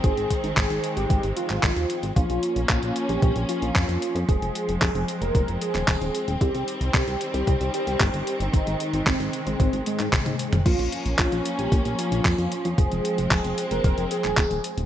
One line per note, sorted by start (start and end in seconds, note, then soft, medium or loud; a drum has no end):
0.00 0.13 G#1 loud
0.00 2.12 D#3 medium
0.00 2.14 G#3 medium
0.00 2.12 C4 medium
0.00 0.49 G#4 loud
0.00 kick loud
0.00 closed hi-hat medium
0.17 0.26 G#1 medium
0.17 closed hi-hat soft
0.30 kick medium
0.30 closed hi-hat medium
0.44 0.53 G#1 medium
0.44 closed hi-hat soft
0.57 0.66 G#1 loud
0.57 0.91 G#4 medium
0.57 kick loud
0.57 clap loud
0.57 closed hi-hat medium
0.70 0.80 G#1 medium
0.70 closed hi-hat soft
0.84 closed hi-hat medium
0.97 1.06 G#1 medium
0.97 1.30 G4 loud
0.97 closed hi-hat soft
1.10 1.19 G#1 loud
1.10 kick loud
1.10 closed hi-hat medium
1.23 1.33 G#1 medium
1.23 closed hi-hat soft
1.37 2.06 F4 loud
1.37 closed hi-hat medium
1.50 1.59 G#1 medium
1.50 clap soft
1.50 closed hi-hat soft
1.63 1.72 G#1 loud
1.63 kick loud
1.63 clap loud
1.63 closed hi-hat medium
1.76 1.86 D#2 medium
1.76 closed hi-hat soft
1.90 closed hi-hat medium
2.03 2.12 G#1 medium
2.03 closed hi-hat soft
2.16 2.26 A#1 loud
2.16 6.37 F3 medium
2.16 4.27 A#3 medium
2.16 4.27 C#4 medium
2.16 2.61 F4 loud
2.16 kick loud
2.16 closed hi-hat medium
2.30 2.39 A#1 medium
2.30 closed hi-hat soft
2.43 closed hi-hat medium
2.56 2.65 A#1 medium
2.56 closed hi-hat soft
2.69 2.79 A#1 loud
2.69 3.03 F4 medium
2.69 kick loud
2.69 clap loud
2.69 closed hi-hat medium
2.83 2.92 A#1 medium
2.83 closed hi-hat soft
2.96 closed hi-hat medium
3.09 3.18 A#1 medium
3.09 3.43 G4 medium
3.09 closed hi-hat soft
3.22 3.32 A#1 loud
3.22 kick loud
3.22 closed hi-hat medium
3.36 3.45 A#1 medium
3.36 closed hi-hat soft
3.49 4.18 F4 loud
3.49 closed hi-hat medium
3.62 3.72 A#1 medium
3.62 closed hi-hat soft
3.76 3.85 F2 loud
3.76 kick loud
3.76 clap loud
3.76 closed hi-hat medium
3.88 3.98 F2 medium
3.88 closed hi-hat soft
4.02 closed hi-hat medium
4.15 4.25 F2 medium
4.15 closed hi-hat soft
4.28 4.38 F1 loud
4.28 6.39 G#3 medium
4.28 10.62 C4 medium
4.28 4.73 G#4 loud
4.28 kick loud
4.28 closed hi-hat medium
4.42 4.51 F1 medium
4.42 closed hi-hat soft
4.55 closed hi-hat medium
4.68 4.78 F1 medium
4.68 closed hi-hat soft
4.82 4.91 F1 loud
4.82 5.15 G#4 medium
4.82 kick loud
4.82 clap loud
4.82 closed hi-hat medium
4.95 5.04 F1 medium
4.95 closed hi-hat soft
5.08 closed hi-hat medium
5.21 5.31 F1 medium
5.21 5.55 A#4 loud
5.21 closed hi-hat soft
5.35 5.44 F1 loud
5.35 kick loud
5.35 closed hi-hat medium
5.48 5.57 F1 medium
5.48 closed hi-hat soft
5.61 6.30 G#4 loud
5.61 closed hi-hat medium
5.75 5.84 D#1 medium
5.75 clap soft
5.75 closed hi-hat soft
5.88 5.97 D#1 loud
5.88 kick loud
5.88 clap loud
5.88 closed hi-hat medium
6.01 6.11 D#1 medium
6.01 closed hi-hat soft
6.15 closed hi-hat medium
6.28 6.37 D#1 medium
6.28 closed hi-hat soft
6.41 6.50 C2 loud
6.41 10.62 D#3 medium
6.41 8.51 G3 medium
6.41 6.86 G4 loud
6.41 kick loud
6.41 closed hi-hat medium
6.54 6.64 C2 medium
6.54 closed hi-hat soft
6.68 closed hi-hat medium
6.81 6.90 C2 medium
6.81 closed hi-hat soft
6.94 7.03 C2 loud
6.94 7.28 G4 medium
6.94 kick loud
6.94 clap loud
6.94 closed hi-hat medium
7.07 7.17 C2 medium
7.07 closed hi-hat soft
7.21 closed hi-hat medium
7.34 7.43 C2 medium
7.34 7.68 G4 loud
7.34 closed hi-hat soft
7.47 7.57 C2 loud
7.47 kick loud
7.47 closed hi-hat medium
7.61 7.70 C2 medium
7.61 closed hi-hat soft
7.74 8.43 G4 loud
7.74 closed hi-hat medium
7.87 7.96 C2 medium
7.87 closed hi-hat soft
8.00 8.10 G1 loud
8.00 kick loud
8.00 clap loud
8.00 closed hi-hat medium
8.14 8.23 G1 medium
8.14 closed hi-hat soft
8.27 closed hi-hat medium
8.40 8.49 G1 medium
8.40 closed hi-hat soft
8.53 8.63 G#1 loud
8.53 10.64 G#3 medium
8.53 8.98 D#4 loud
8.53 kick loud
8.53 closed hi-hat medium
8.67 8.76 G#1 medium
8.67 closed hi-hat soft
8.80 closed hi-hat medium
8.93 9.03 G#1 medium
8.93 closed hi-hat soft
9.07 9.16 G#1 loud
9.07 9.40 C4 medium
9.07 kick loud
9.07 clap loud
9.07 closed hi-hat medium
9.20 9.29 G#1 medium
9.20 closed hi-hat soft
9.33 closed hi-hat medium
9.46 9.56 G#1 medium
9.46 9.80 C4 medium
9.46 closed hi-hat soft
9.60 9.69 G#1 loud
9.60 kick loud
9.60 closed hi-hat medium
9.73 9.82 G#1 medium
9.73 closed hi-hat soft
9.86 10.55 G#3 loud
9.86 closed hi-hat medium
9.99 10.09 G#2 medium
9.99 clap soft
9.99 closed hi-hat soft
10.13 10.22 G#1 loud
10.13 kick loud
10.13 clap loud
10.13 closed hi-hat medium
10.13 high tom medium
10.26 10.35 G#2 medium
10.26 closed hi-hat soft
10.26 high tom medium
10.39 closed hi-hat medium
10.53 10.62 D#1 medium
10.53 closed hi-hat soft
10.53 mid tom medium
10.66 10.75 A#1 loud
10.66 14.86 F3 medium
10.66 12.76 A#3 medium
10.66 12.76 C#4 medium
10.66 11.11 F4 loud
10.66 kick loud
10.66 closed hi-hat medium
10.66 crash medium
10.79 10.88 A#1 medium
10.79 closed hi-hat soft
10.92 closed hi-hat medium
11.06 11.15 A#1 medium
11.06 closed hi-hat soft
11.19 11.28 A#1 loud
11.19 11.53 F4 medium
11.19 kick loud
11.19 clap loud
11.19 closed hi-hat medium
11.32 11.41 A#1 medium
11.32 closed hi-hat soft
11.45 closed hi-hat medium
11.59 11.68 A#1 medium
11.59 11.92 G4 loud
11.59 closed hi-hat soft
11.72 11.81 A#1 loud
11.72 kick loud
11.72 closed hi-hat medium
11.85 11.95 A#1 medium
11.85 closed hi-hat soft
11.98 12.68 F4 loud
11.98 closed hi-hat medium
12.12 12.21 A#1 medium
12.12 closed hi-hat soft
12.25 12.34 F2 loud
12.25 kick loud
12.25 clap loud
12.25 closed hi-hat medium
12.38 12.48 F2 medium
12.38 closed hi-hat soft
12.52 closed hi-hat medium
12.65 12.74 F2 medium
12.65 closed hi-hat soft
12.78 12.87 F1 loud
12.78 14.86 G#3 medium
12.78 14.86 C4 medium
12.78 13.23 G#4 loud
12.78 kick loud
12.78 closed hi-hat medium
12.91 13.01 F1 medium
12.91 closed hi-hat soft
13.05 closed hi-hat medium
13.18 13.27 F1 medium
13.18 closed hi-hat soft
13.31 13.41 F1 loud
13.31 13.65 G#4 medium
13.31 kick loud
13.31 clap loud
13.31 closed hi-hat medium
13.44 13.54 F1 medium
13.44 closed hi-hat soft
13.58 closed hi-hat medium
13.71 13.80 F1 medium
13.71 14.05 A#4 loud
13.71 closed hi-hat soft
13.84 13.94 F1 loud
13.84 kick loud
13.84 closed hi-hat medium
13.98 14.07 F1 medium
13.98 closed hi-hat soft
14.11 14.80 G#4 loud
14.11 closed hi-hat medium
14.24 14.34 D#1 medium
14.24 clap soft
14.24 closed hi-hat soft
14.37 14.47 D#1 loud
14.37 kick loud
14.37 clap loud
14.37 closed hi-hat medium
14.51 14.60 D#1 medium
14.51 closed hi-hat soft
14.64 closed hi-hat medium
14.77 14.86 D#1 medium
14.77 closed hi-hat soft